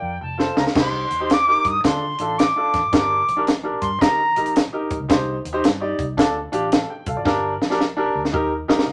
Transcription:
0.00 0.17 F2 medium
0.00 0.13 D5 loud
0.00 0.21 G5 medium
0.00 0.17 A#5 medium
0.21 0.50 F1 medium
0.21 0.54 G5 medium
0.21 0.55 A5 medium
0.38 0.61 F4 medium
0.38 0.61 A4 medium
0.38 0.62 C5 medium
0.38 snare medium
0.56 0.64 C#2 medium
0.56 0.74 F5 medium
0.56 0.64 A#5 medium
0.56 snare medium
0.67 snare medium
0.75 1.04 C2 loud
0.75 1.02 D#4 medium
0.75 1.02 G4 medium
0.75 1.02 C5 medium
0.75 1.34 C6 loud
0.75 kick loud
0.75 snare loud
0.75 crash loud
1.10 1.54 D#2 medium
1.10 closed hi-hat medium
1.20 1.30 D#4 medium
1.20 1.30 G4 medium
1.20 1.30 C5 medium
1.30 1.68 D6 loud
1.30 snare loud
1.30 closed hi-hat medium
1.47 1.70 D#4 medium
1.47 1.70 G4 medium
1.47 1.70 A#4 medium
1.64 1.80 G2 medium
1.64 1.84 D#6 loud
1.64 kick medium
1.64 closed hi-hat medium
1.84 2.12 D3 loud
1.84 2.02 D4 medium
1.84 2.02 F4 medium
1.84 2.02 A4 medium
1.84 2.40 C6 loud
1.84 kick loud
1.84 snare loud
1.84 closed hi-hat loud
2.18 2.49 A1 medium
2.18 2.34 D4 medium
2.18 2.34 F4 medium
2.18 2.35 A4 medium
2.18 closed hi-hat medium
2.38 2.92 D6 medium
2.38 snare loud
2.38 closed hi-hat loud
2.56 2.78 D4 medium
2.56 2.79 F4 medium
2.56 2.79 A4 medium
2.73 2.82 A1 medium
2.73 kick medium
2.73 snare soft
2.73 closed hi-hat medium
2.83 2.91 G#1 medium
2.92 3.21 G1 loud
2.92 3.19 D4 medium
2.92 3.19 G4 medium
2.92 3.20 A#4 medium
2.92 3.44 D6 medium
2.92 kick loud
2.92 snare loud
2.92 closed hi-hat loud
3.28 3.72 A#1 medium
3.28 closed hi-hat medium
3.37 3.47 D4 medium
3.37 3.47 G4 medium
3.37 3.47 A#4 medium
3.47 snare medium
3.47 closed hi-hat medium
3.63 3.86 D4 medium
3.63 3.87 G4 medium
3.63 3.87 A#4 medium
3.81 3.97 G2 medium
3.81 4.03 C6 loud
3.81 kick medium
3.81 closed hi-hat medium
4.00 4.29 D#3 medium
4.00 4.18 D#4 medium
4.00 4.19 G4 medium
4.00 4.19 A#4 medium
4.00 4.55 A#5 loud
4.00 kick loud
4.00 snare loud
4.00 closed hi-hat loud
4.36 4.66 A#1 medium
4.36 4.51 D#4 medium
4.36 4.51 G4 medium
4.36 4.51 A#4 medium
4.36 closed hi-hat medium
4.46 closed hi-hat medium
4.56 snare loud
4.56 closed hi-hat loud
4.73 4.95 D#4 medium
4.73 4.95 G4 medium
4.73 4.96 A#4 medium
4.90 4.98 A#1 medium
4.90 kick medium
4.90 closed hi-hat medium
5.00 5.08 C#2 medium
5.08 5.38 C2 loud
5.08 5.36 D#4 medium
5.08 5.36 G4 medium
5.08 5.36 C5 loud
5.08 kick loud
5.08 snare loud
5.08 closed hi-hat loud
5.45 5.60 D#2 medium
5.45 closed hi-hat medium
5.53 5.63 D#4 loud
5.53 5.63 G4 medium
5.53 5.64 C5 loud
5.64 5.92 G2 medium
5.64 snare loud
5.64 closed hi-hat medium
5.80 6.03 D#4 medium
5.80 6.04 G4 medium
5.80 6.04 D5 loud
5.98 6.18 C2 medium
5.98 kick medium
5.98 closed hi-hat medium
6.17 6.46 D2 loud
6.17 6.35 D4 medium
6.17 6.35 F4 medium
6.17 6.36 A4 loud
6.17 kick loud
6.17 snare loud
6.17 closed hi-hat loud
6.52 6.82 A1 medium
6.52 6.67 D4 medium
6.52 6.67 F4 medium
6.52 6.67 G4 loud
6.52 closed hi-hat medium
6.72 snare loud
6.72 closed hi-hat loud
6.90 7.06 G5 medium
7.06 7.14 C2 medium
7.06 7.16 A4 medium
7.06 7.16 F5 medium
7.06 kick loud
7.06 closed hi-hat medium
7.17 7.24 G#1 medium
7.17 7.42 F4 medium
7.17 7.42 D5 medium
7.25 7.62 G1 loud
7.25 7.52 D4 loud
7.25 7.52 G4 medium
7.25 7.53 A#4 loud
7.25 kick loud
7.25 snare medium
7.62 8.05 A#1 medium
7.62 snare medium
7.70 7.80 D4 loud
7.70 7.80 G4 medium
7.70 7.81 A#4 loud
7.70 snare medium
7.80 snare medium
7.97 8.19 D4 loud
7.97 8.20 G4 medium
7.97 8.20 A#4 loud
8.15 8.30 D2 loud
8.25 snare medium
8.32 8.62 D#2 loud
8.32 8.51 D#4 medium
8.32 8.51 G4 medium
8.32 8.52 A#4 loud
8.32 kick loud
8.68 8.84 A#1 loud
8.68 8.83 D#4 medium
8.68 8.83 G4 medium
8.68 8.83 A#4 loud
8.68 snare loud
8.79 snare medium
8.88 8.92 D2 medium
8.88 8.92 F#5 medium

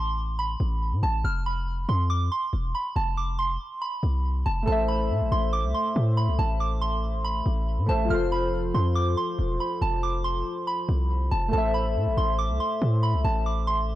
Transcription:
0.00 0.56 A1 loud
0.00 0.36 C6 loud
0.39 0.99 B5 medium
0.60 0.94 A1 loud
0.92 1.02 A2 loud
1.03 1.23 A1 loud
1.03 1.22 A5 medium
1.24 1.86 F1 loud
1.24 1.44 F6 medium
1.46 1.86 B5 medium
1.89 2.30 F2 loud
1.89 2.08 C6 medium
2.10 2.29 D6 loud
2.32 2.72 C6 medium
2.53 2.74 E1 loud
2.75 2.94 B5 medium
2.96 3.58 F1 loud
2.96 3.15 A5 medium
3.17 3.36 D6 medium
3.39 3.79 C6 medium
3.82 4.42 B5 medium
4.03 4.44 C2 loud
4.46 4.66 F1 loud
4.46 4.65 A5 medium
4.63 7.82 A3 medium
4.63 7.84 A4 medium
4.67 5.12 A1 loud
4.67 7.85 C5 medium
4.67 4.86 A5 medium
4.72 7.87 E5 medium
4.88 5.29 B5 medium
5.10 5.22 A2 loud
5.21 5.31 A1 loud
5.32 5.65 A1 loud
5.32 5.51 C6 medium
5.53 5.72 D6 medium
5.64 5.74 C2 loud
5.74 6.15 C6 medium
5.96 6.29 A2 loud
6.17 6.36 B5 medium
6.28 6.38 C2 loud
6.39 7.42 A1 loud
6.39 6.58 A5 medium
6.60 6.79 D6 medium
6.81 7.22 C6 medium
7.25 7.85 B5 medium
7.46 7.79 A1 loud
7.78 7.88 A2 loud
7.86 8.09 A1 loud
7.86 8.09 A3 medium
7.86 8.10 A4 soft
7.86 8.10 C5 soft
7.86 8.08 A5 medium
7.91 8.11 E5 medium
8.05 11.46 F3 medium
8.05 11.48 F4 medium
8.10 8.72 F1 loud
8.10 11.50 A4 medium
8.10 8.29 F6 medium
8.14 11.51 C5 medium
8.32 8.72 B5 medium
8.74 9.16 F2 loud
8.74 8.93 C6 medium
8.95 9.15 D6 loud
9.17 9.58 C6 medium
9.39 9.59 E1 loud
9.60 9.79 B5 medium
9.81 10.43 F1 loud
9.81 10.01 A5 medium
10.03 10.22 D6 medium
10.24 10.65 C6 medium
10.67 11.28 B5 medium
10.89 11.30 C2 loud
11.31 11.52 F1 loud
11.31 11.51 A5 medium
11.48 13.95 A3 medium
11.48 13.95 A4 medium
11.53 11.97 A1 loud
11.53 13.95 C5 medium
11.53 11.72 A5 medium
11.58 13.95 E5 medium
11.74 12.15 B5 medium
11.96 12.08 A2 loud
12.07 12.17 A1 loud
12.17 12.51 A1 loud
12.17 12.37 C6 medium
12.39 12.58 D6 medium
12.49 12.60 C2 loud
12.60 13.00 C6 medium
12.82 13.15 A2 loud
13.03 13.22 B5 medium
13.14 13.24 C2 loud
13.24 13.95 A1 loud
13.24 13.44 A5 medium
13.46 13.65 D6 medium
13.67 13.95 C6 loud

